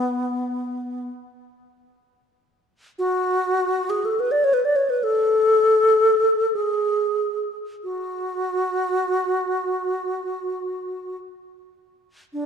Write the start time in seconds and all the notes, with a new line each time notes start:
Already playing: B3
2.99 F#4
3.90 G#4
4.05 A4
4.20 B4
4.31 D5
4.44 C#5
4.54 B4
4.65 D5
4.76 C#5
4.90 B4
5.03 A4
6.55 G#4
7.84 F#4
12.33 D4